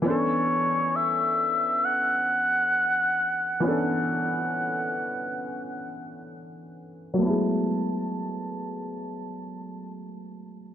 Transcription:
0.02 E3 B3
0.06 C#4 D4 C#5
0.10 A4
0.96 E5
1.85 F#5
3.60 E3 B3
3.64 C#4 D4 A4 F#5
7.14 F#3
7.18 A3 B3
7.22 E4 A5
7.30 G#3

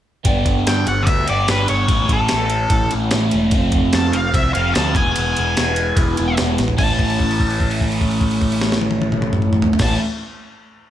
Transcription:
0.24 G1 G2 D3 G3 B3 D4 G4 D5, kick, ride
0.46 G1, kick, ride
0.67 G2 G5, snare, ride
0.87 G1 F#5, ride
1.03 D5 E5
1.07 D2, kick, ride
1.27 G1 G2 D3 G3 B3 D4 G4 D5, ride
1.47 G1 G2 D3 G3 B3 D4 G4 B4, snare, ride
1.68 G1 C#5, ride
1.87 A1 A2 E3 A3 C#4 E4 C#5, kick, ride
2.09 A1 A4, kick, ride
2.28 A1, snare, ride
2.50 ride
2.70 A1, kick, ride
2.90 A1 A2 E3 A3 C#4 E4, ride
3.11 A1 A2 E3 A3 C#4 E4, snare, ride
3.31 E1, ride
3.51 F1 F2 C3 F3 A3 C4 F4 C5, kick, ride
3.55 C4 F4
3.72 F1, kick, ride
3.93 F2 A5, snare, ride
4.13 F1 F5, ride
4.34 C2 E5, kick, ride
4.54 F1 F2 C3 F3 A3 C4 F4 F5, ride
4.74 D2 F2 C3 F3 A3 C4 F4 A5, snare, ride
4.93 E1 E2 B2 E3 G#3 B3 E4 B4 G#5, kick, ride
4.97 B3 E4
5.16 E1, ride
5.37 E1, ride
5.57 E1, snare, ride
5.76 ride
5.96 E1 E2 B2 E3 G#3 B3 E4, kick, ride
6.17 E1 E2 B2 E3 G#3 B3 E4, ride
6.37 E1, snare, ride
6.58 A1, snare, ride
6.68 floor tom
6.77 A1 A2 E3 A3 C#4 E4 C#5 A5, kick, crash
6.99 kick, crash
7.10 crash
7.20 kick, crash
7.31 crash
7.40 kick, crash
7.50 crash
7.60 kick, crash
7.71 crash
7.81 kick, crash
7.92 crash
8.01 kick, crash
8.11 crash
8.21 kick, crash
8.31 crash
8.41 kick, crash
8.52 crash
8.61 snare
8.72 snare
8.82 high tom
8.91 high tom
9.02 high tom
9.12 mid tom
9.22 mid tom
9.33 mid tom
9.42 mid tom
9.53 mid tom
9.62 floor tom
9.73 floor tom
9.79 A1 A2 E3 A3 C#4 E4 C#5 A5, kick, snare, crash
9.83 C#4 E4

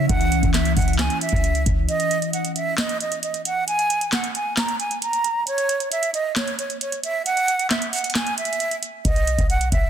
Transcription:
Already playing: E3 C#4 E4
0.09 C#2 F#5, kick, closed hi-hat
0.21 closed hi-hat
0.32 closed hi-hat
0.43 C#2, kick, closed hi-hat
0.54 E5, snare, clap, closed hi-hat
0.65 closed hi-hat
0.76 C#2 F#5, kick, closed hi-hat, open hi-hat
0.82 closed hi-hat
0.88 closed hi-hat
0.93 closed hi-hat
0.98 G#5, snare, clap, closed hi-hat
1.10 closed hi-hat
1.21 E5, closed hi-hat
1.29 C#2, kick, closed hi-hat
1.36 closed hi-hat
1.44 closed hi-hat
1.55 closed hi-hat
1.66 C#2, kick, closed hi-hat
1.89 D#5, closed hi-hat
2.00 closed hi-hat
2.11 closed hi-hat
2.22 closed hi-hat
2.33 F#5, closed hi-hat
2.45 closed hi-hat
2.56 E5, closed hi-hat
2.78 D#5, snare, clap, closed hi-hat
2.89 closed hi-hat
3.00 D#5, closed hi-hat
3.12 closed hi-hat
3.23 D#5, closed hi-hat
3.34 closed hi-hat
3.45 F#5, closed hi-hat
3.68 G#5, closed hi-hat
3.79 closed hi-hat
3.90 closed hi-hat
4.01 closed hi-hat
4.12 F#5, snare, clap, closed hi-hat
4.24 closed hi-hat
4.35 G#5, closed hi-hat
4.57 A#5, snare, clap, closed hi-hat
4.68 closed hi-hat
4.80 G#5, closed hi-hat
4.91 closed hi-hat
5.02 A#5, closed hi-hat
5.13 closed hi-hat
5.24 closed hi-hat
5.47 C#5, closed hi-hat
5.58 closed hi-hat
5.69 closed hi-hat
5.80 closed hi-hat
5.92 E5, closed hi-hat
6.03 closed hi-hat
6.14 D#5, closed hi-hat
6.36 C#5, snare, clap, closed hi-hat
6.48 closed hi-hat
6.59 C#5, closed hi-hat
6.70 closed hi-hat
6.81 C#5, closed hi-hat
6.92 closed hi-hat
7.03 E5, closed hi-hat
7.25 F#5, closed hi-hat
7.37 closed hi-hat
7.48 closed hi-hat
7.59 closed hi-hat
7.70 E5, snare, clap, closed hi-hat
7.82 closed hi-hat
7.93 F#5, closed hi-hat, open hi-hat
7.99 closed hi-hat
8.04 closed hi-hat
8.10 closed hi-hat
8.15 G#5, snare, clap, closed hi-hat
8.27 closed hi-hat
8.38 E5, closed hi-hat
8.45 closed hi-hat
8.53 closed hi-hat
8.60 closed hi-hat
8.71 closed hi-hat
8.83 closed hi-hat
9.05 B1 D#5, kick, closed hi-hat
9.16 closed hi-hat
9.27 closed hi-hat
9.38 B1, kick, closed hi-hat
9.50 F#5, closed hi-hat
9.61 closed hi-hat
9.72 B1 E5, kick, closed hi-hat

